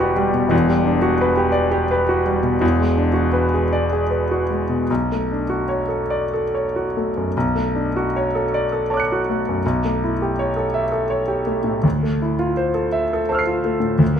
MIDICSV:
0, 0, Header, 1, 2, 480
1, 0, Start_track
1, 0, Key_signature, 2, "minor"
1, 0, Tempo, 700117
1, 361, Time_signature, 3, 2, 24, 8
1, 2290, Tempo, 775194
1, 3250, Tempo, 819672
1, 4690, Tempo, 775194
1, 5170, Tempo, 743494
1, 8050, Tempo, 715137
1, 9133, End_track
2, 0, Start_track
2, 0, Title_t, "Grand piano"
2, 0, Program_c, 0, 0
2, 0, Control_c, 0, 64, 127
2, 0, Note_on_c, 0, 28, 84
2, 0, Note_on_c, 0, 40, 85
2, 0, Note_on_c, 0, 55, 68
2, 0, Note_on_c, 0, 62, 62
2, 0, Note_on_c, 0, 66, 67
2, 0, Note_on_c, 0, 67, 73
2, 0, Note_on_c, 0, 71, 63
2, 0, Note_on_c, 0, 74, 74
2, 72, Note_off_c, 0, 71, 0
2, 112, Note_off_c, 0, 55, 0
2, 112, Note_on_c, 0, 55, 68
2, 192, Note_off_c, 0, 66, 0
2, 231, Note_on_c, 0, 47, 58
2, 307, Note_off_c, 0, 55, 0
2, 321, Note_off_c, 0, 28, 0
2, 331, Note_on_c, 0, 28, 75
2, 333, Note_off_c, 0, 40, 0
2, 348, Note_on_c, 0, 40, 88
2, 354, Note_off_c, 0, 47, 0
2, 371, Control_c, 0, 64, 0
2, 373, Note_off_c, 0, 74, 0
2, 376, Note_off_c, 0, 62, 0
2, 376, Note_off_c, 0, 67, 0
2, 464, Control_c, 0, 64, 127
2, 469, Note_on_c, 0, 55, 63
2, 582, Note_on_c, 0, 62, 55
2, 662, Note_off_c, 0, 55, 0
2, 699, Note_on_c, 0, 66, 63
2, 780, Note_off_c, 0, 62, 0
2, 831, Note_on_c, 0, 71, 69
2, 900, Note_off_c, 0, 66, 0
2, 941, Note_on_c, 0, 67, 64
2, 1027, Note_off_c, 0, 71, 0
2, 1042, Note_on_c, 0, 74, 68
2, 1142, Note_off_c, 0, 67, 0
2, 1176, Note_on_c, 0, 67, 71
2, 1252, Note_off_c, 0, 74, 0
2, 1311, Note_on_c, 0, 71, 63
2, 1379, Note_off_c, 0, 67, 0
2, 1432, Note_on_c, 0, 66, 62
2, 1507, Note_off_c, 0, 71, 0
2, 1545, Note_on_c, 0, 55, 61
2, 1628, Note_off_c, 0, 66, 0
2, 1666, Note_on_c, 0, 47, 56
2, 1746, Note_off_c, 0, 55, 0
2, 1760, Note_off_c, 0, 28, 0
2, 1768, Note_off_c, 0, 40, 0
2, 1785, Note_on_c, 0, 28, 75
2, 1792, Note_on_c, 0, 40, 83
2, 1795, Note_off_c, 0, 47, 0
2, 1813, Control_c, 0, 64, 0
2, 1919, Note_on_c, 0, 56, 54
2, 1923, Control_c, 0, 64, 127
2, 2038, Note_on_c, 0, 62, 53
2, 2116, Note_off_c, 0, 56, 0
2, 2149, Note_on_c, 0, 66, 55
2, 2238, Note_off_c, 0, 62, 0
2, 2283, Note_on_c, 0, 71, 59
2, 2350, Note_off_c, 0, 66, 0
2, 2413, Note_on_c, 0, 68, 60
2, 2471, Note_off_c, 0, 71, 0
2, 2529, Note_on_c, 0, 74, 63
2, 2597, Note_off_c, 0, 68, 0
2, 2652, Note_on_c, 0, 68, 58
2, 2717, Note_off_c, 0, 74, 0
2, 2764, Note_on_c, 0, 71, 51
2, 2840, Note_off_c, 0, 68, 0
2, 2893, Note_on_c, 0, 66, 53
2, 2956, Note_off_c, 0, 71, 0
2, 3010, Note_on_c, 0, 56, 50
2, 3082, Note_off_c, 0, 66, 0
2, 3128, Note_on_c, 0, 47, 49
2, 3204, Note_off_c, 0, 56, 0
2, 3218, Note_off_c, 0, 28, 0
2, 3221, Note_off_c, 0, 40, 0
2, 3251, Note_off_c, 0, 47, 0
2, 3258, Note_on_c, 0, 35, 63
2, 3261, Control_c, 0, 64, 0
2, 3372, Control_c, 0, 64, 127
2, 3384, Note_on_c, 0, 57, 44
2, 3500, Note_on_c, 0, 62, 44
2, 3566, Note_off_c, 0, 57, 0
2, 3604, Note_on_c, 0, 66, 54
2, 3684, Note_off_c, 0, 62, 0
2, 3716, Note_on_c, 0, 73, 52
2, 3797, Note_off_c, 0, 66, 0
2, 3831, Note_on_c, 0, 69, 48
2, 3913, Note_off_c, 0, 73, 0
2, 3960, Note_on_c, 0, 74, 60
2, 4031, Note_off_c, 0, 69, 0
2, 4096, Note_on_c, 0, 69, 56
2, 4156, Note_off_c, 0, 74, 0
2, 4220, Note_on_c, 0, 73, 48
2, 4284, Note_off_c, 0, 69, 0
2, 4344, Note_on_c, 0, 66, 44
2, 4408, Note_off_c, 0, 73, 0
2, 4466, Note_on_c, 0, 57, 49
2, 4533, Note_off_c, 0, 66, 0
2, 4586, Note_on_c, 0, 42, 43
2, 4652, Note_off_c, 0, 57, 0
2, 4671, Note_off_c, 0, 35, 0
2, 4698, Note_off_c, 0, 42, 0
2, 4701, Control_c, 0, 64, 0
2, 4703, Note_on_c, 0, 35, 68
2, 4809, Control_c, 0, 64, 127
2, 4817, Note_on_c, 0, 57, 52
2, 4941, Note_on_c, 0, 62, 51
2, 5007, Note_off_c, 0, 57, 0
2, 5071, Note_on_c, 0, 66, 58
2, 5127, Note_off_c, 0, 62, 0
2, 5194, Note_on_c, 0, 73, 56
2, 5253, Note_off_c, 0, 66, 0
2, 5316, Note_on_c, 0, 69, 60
2, 5378, Note_off_c, 0, 73, 0
2, 5439, Note_on_c, 0, 74, 65
2, 5500, Note_off_c, 0, 69, 0
2, 5556, Note_on_c, 0, 69, 57
2, 5624, Note_off_c, 0, 74, 0
2, 5671, Note_on_c, 0, 81, 45
2, 5677, Note_on_c, 0, 73, 51
2, 5696, Note_on_c, 0, 86, 43
2, 5716, Note_on_c, 0, 90, 42
2, 5733, Note_on_c, 0, 97, 43
2, 5743, Note_off_c, 0, 69, 0
2, 5814, Note_on_c, 0, 66, 51
2, 5864, Note_off_c, 0, 73, 0
2, 5924, Note_on_c, 0, 57, 53
2, 5993, Note_off_c, 0, 66, 0
2, 6050, Note_on_c, 0, 42, 50
2, 6106, Note_off_c, 0, 57, 0
2, 6123, Note_off_c, 0, 81, 0
2, 6124, Note_off_c, 0, 35, 0
2, 6135, Note_off_c, 0, 86, 0
2, 6146, Note_off_c, 0, 90, 0
2, 6153, Control_c, 0, 64, 0
2, 6154, Note_off_c, 0, 97, 0
2, 6156, Note_off_c, 0, 42, 0
2, 6162, Note_on_c, 0, 35, 69
2, 6259, Control_c, 0, 64, 127
2, 6282, Note_on_c, 0, 57, 51
2, 6404, Note_on_c, 0, 64, 49
2, 6458, Note_off_c, 0, 57, 0
2, 6523, Note_on_c, 0, 67, 54
2, 6577, Note_off_c, 0, 64, 0
2, 6633, Note_on_c, 0, 73, 55
2, 6694, Note_off_c, 0, 67, 0
2, 6744, Note_on_c, 0, 69, 54
2, 6807, Note_off_c, 0, 73, 0
2, 6858, Note_on_c, 0, 76, 62
2, 6921, Note_off_c, 0, 69, 0
2, 6973, Note_on_c, 0, 69, 60
2, 7038, Note_off_c, 0, 76, 0
2, 7091, Note_on_c, 0, 73, 53
2, 7156, Note_off_c, 0, 69, 0
2, 7207, Note_on_c, 0, 67, 49
2, 7279, Note_off_c, 0, 73, 0
2, 7328, Note_on_c, 0, 57, 55
2, 7401, Note_off_c, 0, 67, 0
2, 7438, Note_on_c, 0, 45, 52
2, 7525, Note_off_c, 0, 57, 0
2, 7555, Note_off_c, 0, 35, 0
2, 7564, Note_on_c, 0, 38, 67
2, 7568, Note_off_c, 0, 45, 0
2, 7584, Control_c, 0, 64, 0
2, 7690, Note_on_c, 0, 57, 46
2, 7696, Control_c, 0, 64, 127
2, 7815, Note_on_c, 0, 64, 47
2, 7885, Note_off_c, 0, 57, 0
2, 7925, Note_on_c, 0, 65, 54
2, 8003, Note_off_c, 0, 64, 0
2, 8040, Note_on_c, 0, 72, 62
2, 8116, Note_off_c, 0, 65, 0
2, 8155, Note_on_c, 0, 69, 54
2, 8235, Note_off_c, 0, 72, 0
2, 8277, Note_on_c, 0, 76, 65
2, 8351, Note_off_c, 0, 69, 0
2, 8417, Note_on_c, 0, 69, 66
2, 8472, Note_off_c, 0, 76, 0
2, 8522, Note_on_c, 0, 81, 45
2, 8525, Note_on_c, 0, 72, 58
2, 8545, Note_on_c, 0, 88, 44
2, 8561, Note_on_c, 0, 89, 42
2, 8588, Note_on_c, 0, 96, 46
2, 8604, Note_off_c, 0, 69, 0
2, 8641, Note_on_c, 0, 65, 50
2, 8719, Note_off_c, 0, 72, 0
2, 8762, Note_on_c, 0, 57, 57
2, 8839, Note_off_c, 0, 65, 0
2, 8865, Note_on_c, 0, 45, 49
2, 8959, Note_off_c, 0, 57, 0
2, 8978, Note_off_c, 0, 38, 0
2, 8982, Note_off_c, 0, 81, 0
2, 8988, Note_on_c, 0, 38, 69
2, 8993, Note_off_c, 0, 88, 0
2, 8998, Note_off_c, 0, 45, 0
2, 9001, Note_off_c, 0, 89, 0
2, 9015, Note_off_c, 0, 96, 0
2, 9020, Control_c, 0, 64, 0
2, 9103, Control_c, 0, 64, 127
2, 9108, Note_on_c, 0, 58, 53
2, 9133, Note_off_c, 0, 38, 0
2, 9133, Note_off_c, 0, 58, 0
2, 9133, End_track
0, 0, End_of_file